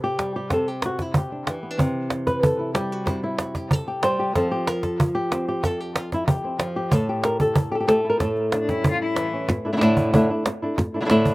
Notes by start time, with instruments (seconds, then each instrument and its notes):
Already playing: nylon-string guitar C3
0.04 nylon-string guitar G4
0.18 nylon-string guitar G3, cajon slap
0.36 nylon-string guitar G4
0.50 nylon-string guitar C3 A4, cajon bass, cajon slap
0.67 nylon-string guitar G4, cajon slap
0.82 nylon-string guitar F#4, cajon slap
0.99 nylon-string guitar E4, cajon bass, cajon slap
1.14 nylon-string guitar G4, cajon bass
1.32 nylon-string guitar D4
1.47 nylon-string guitar E3, cajon slap
1.63 nylon-string guitar B3
1.71 nylon-string guitar D4
1.78 nylon-string guitar C3, cajon bass
1.95 cajon slap
2.10 cajon slap
2.27 nylon-string guitar B4, cajon bass, cajon slap
2.43 nylon-string guitar A4, cajon bass
2.59 nylon-string guitar E4
2.74 nylon-string guitar G3 G4, cajon slap
2.92 nylon-string guitar F#4
3.06 nylon-string guitar C3 E4, cajon bass, cajon slap
3.23 nylon-string guitar E4, cajon slap
3.39 nylon-string guitar F#4, cajon slap
3.55 nylon-string guitar G4, cajon bass, cajon slap
3.71 nylon-string guitar A4, cajon bass
3.88 nylon-string guitar G4
4.03 nylon-string guitar G3 C5, cajon slap
4.19 nylon-string guitar G4
4.35 nylon-string guitar F3 C4 F4 A4, cajon bass, cajon slap
4.51 nylon-string guitar G4, cajon slap
4.67 nylon-string guitar A#4, cajon slap
4.83 nylon-string guitar A4, cajon bass, cajon slap
5.00 cajon bass
5.15 nylon-string guitar G4
5.32 nylon-string guitar C4, cajon slap
5.48 nylon-string guitar G4
5.63 nylon-string guitar F2 A4, cajon bass, cajon slap
5.80 nylon-string guitar G4
5.96 nylon-string guitar F4, cajon slap
6.12 nylon-string guitar E4, cajon bass, cajon slap
6.28 nylon-string guitar G4, cajon bass
6.44 nylon-string guitar C4
6.59 nylon-string guitar F3, cajon slap
6.76 nylon-string guitar G4
6.91 nylon-string guitar A2 A4, cajon bass
7.09 nylon-string guitar G4
7.24 nylon-string guitar A#4, cajon slap
7.40 nylon-string guitar A4, cajon bass
7.56 cajon bass
7.72 nylon-string guitar G4 A4
7.80 nylon-string guitar G4
7.88 nylon-string guitar A3 A4, cajon slap
8.05 nylon-string guitar E4
8.10 nylon-string guitar A#4
8.20 nylon-string guitar A2 A4, cajon bass, cajon slap
8.36 cajon slap
8.52 cello D4, cajon slap
8.60 cello D4
8.69 nylon-string guitar G3 C#4, cello E4, cajon bass, cajon slap
8.84 cajon bass
8.91 cello F4
9.01 cello E4
9.16 nylon-string guitar E3, cajon slap
9.33 nylon-string guitar C#4
9.49 muted nylon-string guitar stroke, cajon bass, cajon slap
9.65 nylon-string guitar A3 D4 E4
9.73 nylon-string guitar D3 A3 D4 E4
9.77 nylon-string guitar D3 A3 D4 E4
9.81 nylon-string guitar A2 D3 A3 D4 E4, cajon slap
9.97 cajon bass
10.13 nylon-string guitar A2 D3 A3 D4 E4, cajon bass
10.30 nylon-string guitar A3 D4 E4
10.46 muted nylon-string guitar stroke, cajon slap
10.62 nylon-string guitar A3 D4 E4
10.78 muted nylon-string guitar stroke, cajon bass, cajon slap
10.94 nylon-string guitar A3 D4 E4, cajon slap
11.01 nylon-string guitar D3 A3 D4 E4
11.05 nylon-string guitar D3 A3 D4 E4
11.10 nylon-string guitar A2 D3 A3 D4 E4, cajon slap
11.26 cajon bass